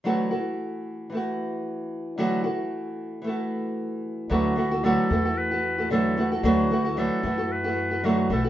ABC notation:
X:1
M:4/4
L:1/16
Q:"Swing 16ths" 1/4=113
K:Dlyd
V:1 name="Clarinet"
z16 | z16 | F4 A4 B4 A3 z | F4 A4 B4 F F A2 |]
V:2 name="Nylon-string guitar"
[D,E,F,A,FA]2 [E,A,FA]6 [E,A,FA]8 | [D,E,F,A,FA]2 [E,A,FA]6 [E,A,FA]8 | [D,E,F,A,FA]2 [E,A,FA] [E,A,FA] [D,E,F,A,FA]2 [E,A,FA] [E,A,FA]2 [E,A,FA]2 [E,A,FA] [D,E,F,A,FA]2 [E,A,FA] [E,A,FA] | [D,E,F,A,FA]2 [E,A,FA] [E,A,FA] [D,E,F,A,FA]2 [E,A,FA] [E,A,FA]2 [E,A,FA]2 [E,A,FA] [D,E,F,A,FA]2 [E,A,FA] [FA] |]
V:3 name="Upright bass" clef=bass
z16 | z16 | D,,4- D,, z E,,8- E,,2 | D,,4- D,, z F,,8 B,,,2 |]